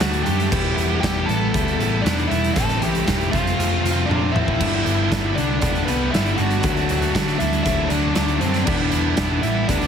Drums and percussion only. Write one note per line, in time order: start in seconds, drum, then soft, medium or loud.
0.00 snare loud
0.00 closed hi-hat loud
0.13 closed hi-hat soft
0.26 closed hi-hat medium
0.40 closed hi-hat soft
0.52 kick loud
0.52 crash loud
0.78 closed hi-hat medium
1.03 kick medium
1.03 snare loud
1.03 closed hi-hat loud
1.29 closed hi-hat medium
1.54 kick loud
1.54 closed hi-hat loud
1.68 closed hi-hat soft
1.80 closed hi-hat medium
2.06 snare loud
2.06 closed hi-hat loud
2.19 closed hi-hat soft
2.31 closed hi-hat medium
2.44 closed hi-hat soft
2.56 kick loud
2.56 closed hi-hat loud
2.69 snare soft
2.69 closed hi-hat medium
2.82 closed hi-hat medium
2.95 closed hi-hat soft
3.08 kick medium
3.08 snare loud
3.08 closed hi-hat loud
3.21 closed hi-hat soft
3.33 kick loud
3.33 closed hi-hat medium
3.47 closed hi-hat medium
3.60 closed hi-hat loud
3.86 closed hi-hat medium
4.11 high tom medium
4.36 mid tom medium
4.48 kick medium
4.61 kick loud
4.61 crash loud
4.86 closed hi-hat medium
5.12 kick medium
5.12 snare loud
5.12 closed hi-hat loud
5.38 closed hi-hat medium
5.62 kick loud
5.62 closed hi-hat loud
5.75 closed hi-hat soft
5.88 closed hi-hat medium
6.14 snare loud
6.14 closed hi-hat loud
6.26 closed hi-hat soft
6.38 closed hi-hat medium
6.51 closed hi-hat soft
6.63 kick loud
6.63 closed hi-hat loud
6.77 closed hi-hat soft
6.89 closed hi-hat medium
7.02 closed hi-hat soft
7.15 kick medium
7.15 snare loud
7.15 closed hi-hat loud
7.28 snare soft
7.28 closed hi-hat soft
7.40 closed hi-hat medium
7.53 closed hi-hat soft
7.66 kick loud
7.66 closed hi-hat loud
7.90 closed hi-hat medium
8.15 snare loud
8.15 closed hi-hat loud
8.28 closed hi-hat soft
8.41 closed hi-hat medium
8.54 snare soft
8.54 closed hi-hat medium
8.67 kick loud
8.67 crash loud
8.92 closed hi-hat medium
9.17 kick medium
9.17 snare loud
9.17 closed hi-hat loud
9.43 closed hi-hat medium
9.69 kick loud
9.69 closed hi-hat loud
9.81 closed hi-hat soft